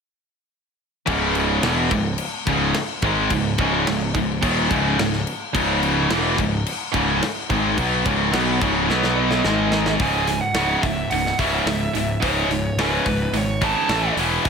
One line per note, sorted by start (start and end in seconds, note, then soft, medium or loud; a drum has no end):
1.06 1.59 C#1 loud
1.06 1.62 C#2 medium
1.06 1.62 G#2 loud
1.06 1.62 C#3 loud
1.06 kick loud
1.06 crash medium
1.35 crash medium
1.63 1.89 E1 medium
1.63 1.90 E2 medium
1.63 1.91 B2 loud
1.63 1.91 E3 loud
1.63 snare loud
1.63 crash medium
1.91 2.17 C#1 medium
1.91 2.14 C#2 medium
1.91 2.14 G#2 medium
1.91 kick medium
1.91 crash medium
2.18 crash medium
2.47 2.73 C#1 medium
2.47 2.74 C#2 medium
2.47 2.75 G#2 loud
2.47 2.75 C#3 medium
2.47 kick loud
2.47 crash medium
2.74 snare loud
2.74 crash medium
3.02 3.28 G#1 medium
3.02 3.31 G#2 medium
3.02 3.31 D#3 medium
3.02 3.31 G#3 medium
3.02 kick loud
3.02 crash medium
3.30 3.57 C#1 medium
3.30 3.54 C#2 medium
3.30 3.54 G#2 medium
3.30 kick medium
3.30 crash medium
3.58 3.85 C#1 medium
3.58 3.86 C#2 medium
3.58 3.87 G#2 medium
3.58 3.87 C#3 loud
3.58 kick loud
3.58 crash medium
3.87 4.13 C#1 medium
3.87 4.10 C#2 medium
3.87 4.10 G#2 medium
3.87 snare loud
3.87 crash medium
4.15 4.41 C#1 medium
4.15 4.38 C#2 medium
4.15 4.38 G#2 medium
4.15 kick medium
4.15 crash medium
4.43 4.69 D#1 medium
4.43 4.70 D#2 medium
4.43 4.70 A#2 medium
4.43 4.70 D#3 medium
4.43 kick loud
4.43 crash medium
4.71 4.97 C#1 medium
4.71 4.98 C#2 medium
4.71 4.98 G#2 loud
4.71 4.98 C#3 loud
4.71 kick loud
4.71 crash medium
4.99 5.25 C#1 medium
4.99 5.21 C#2 medium
4.99 5.21 G#2 medium
4.99 snare loud
4.99 crash medium
5.13 snare soft
5.27 crash medium
5.55 6.07 C#1 medium
5.55 6.10 C#2 loud
5.55 6.10 G#2 loud
5.55 6.10 C#3 loud
5.55 kick loud
5.55 crash medium
5.83 crash medium
6.10 6.36 E1 medium
6.10 6.38 E2 loud
6.10 6.38 B2 loud
6.10 6.38 E3 loud
6.10 snare loud
6.10 crash medium
6.38 6.64 C#1 medium
6.38 6.62 C#2 medium
6.38 6.62 G#2 medium
6.38 kick medium
6.38 crash medium
6.66 crash medium
6.92 7.20 C#1 medium
6.92 7.22 C#2 medium
6.92 7.20 G#2 medium
6.92 kick loud
6.92 crash medium
6.96 7.22 G#2 medium
6.96 7.22 C#3 loud
7.23 snare loud
7.23 crash medium
7.50 7.76 G#1 medium
7.50 7.77 G#2 medium
7.50 7.77 D#3 loud
7.50 7.78 G#3 loud
7.50 kick loud
7.50 crash medium
7.78 8.04 B1 medium
7.78 8.05 B2 medium
7.78 8.06 F#3 loud
7.78 8.06 B3 loud
7.78 kick loud
7.78 crash medium
8.06 8.32 C#1 loud
8.06 8.33 C#2 medium
8.06 8.33 G#2 medium
8.06 8.33 C#3 medium
8.06 kick loud
8.06 crash medium
8.33 8.59 B1 medium
8.33 8.60 B2 medium
8.33 8.61 F#3 loud
8.33 8.62 B3 loud
8.33 snare loud
8.33 crash medium
8.61 8.87 C#1 medium
8.61 8.88 C#2 medium
8.61 8.89 G#2 medium
8.61 8.89 C#3 medium
8.61 kick loud
8.61 crash medium
8.88 9.40 B1 medium
8.88 9.44 B2 medium
8.88 9.44 F#3 medium
8.88 9.44 B3 loud
8.88 snare medium
9.03 snare medium
9.16 9.96 D#5 medium
9.31 snare medium
9.44 9.96 G#1 loud
9.44 10.00 G#2 loud
9.44 10.00 D#3 loud
9.44 10.00 G#3 loud
9.44 snare medium
9.72 snare loud
9.86 snare medium
9.99 10.39 C#1 medium
9.99 10.27 C#2 medium
9.99 10.27 G#2 medium
9.99 10.28 C#3 medium
9.99 10.40 G#5 loud
9.99 kick loud
9.99 open hi-hat medium
10.27 10.53 C#2 medium
10.27 10.54 G#2 medium
10.27 snare soft
10.27 open hi-hat medium
10.41 10.85 F#5 medium
10.54 10.74 C#1 medium
10.54 10.82 C#2 medium
10.54 10.82 G#2 medium
10.54 10.82 C#3 medium
10.54 snare loud
10.54 open hi-hat medium
10.82 11.03 C#1 medium
10.82 11.10 C#2 medium
10.82 11.10 G#2 medium
10.82 11.12 E5 medium
10.82 kick medium
10.82 open hi-hat medium
11.10 11.31 C#1 medium
11.10 11.37 C#2 medium
11.10 11.37 G#2 medium
11.10 11.37 F#5 medium
11.10 open hi-hat medium
11.26 snare soft
11.39 11.59 C#1 medium
11.39 11.66 C#2 medium
11.39 11.66 G#2 medium
11.39 11.67 C#3 medium
11.39 12.21 E5 medium
11.39 kick medium
11.39 open hi-hat medium
11.66 11.86 C#1 medium
11.66 11.93 C#2 medium
11.66 11.93 G#2 medium
11.66 snare loud
11.66 open hi-hat medium
11.95 12.15 C#1 medium
11.95 12.21 C#2 medium
11.95 12.21 G#2 medium
11.95 open hi-hat medium
12.21 12.43 C#1 medium
12.21 12.49 C#2 medium
12.21 12.49 G#2 medium
12.21 12.49 C#3 medium
12.21 12.80 C#5 loud
12.21 kick loud
12.21 open hi-hat medium
12.48 12.69 C#1 medium
12.48 12.76 C#2 medium
12.48 12.76 G#2 medium
12.48 open hi-hat medium
12.77 12.98 C#1 medium
12.77 13.05 C#2 medium
12.77 13.06 G#2 medium
12.77 13.06 C#3 loud
12.77 13.37 B4 medium
12.77 snare loud
12.77 open hi-hat medium
13.06 13.26 C#1 medium
13.06 13.32 C#2 medium
13.06 13.32 G#2 medium
13.06 kick medium
13.06 open hi-hat medium
13.33 13.73 G#1 medium
13.33 13.59 C#2 medium
13.33 13.59 G#2 medium
13.33 13.64 C#5 medium
13.33 open hi-hat medium
13.61 13.88 C#2 medium
13.61 13.89 G#2 medium
13.61 13.89 C#3 medium
13.61 14.15 A5 loud
13.61 kick medium
13.61 open hi-hat medium
13.89 14.09 A1 medium
13.89 14.17 A2 medium
13.89 14.17 E3 medium
13.89 14.18 A3 loud
13.89 snare loud
13.89 open hi-hat medium
14.17 14.37 E1 medium
14.17 14.45 E2 medium
14.17 14.45 B2 medium
14.17 14.45 E3 loud
14.17 open hi-hat medium
14.45 14.49 C#1 medium
14.45 14.49 C#2 medium
14.45 14.49 G#5 loud
14.45 kick loud
14.45 open hi-hat medium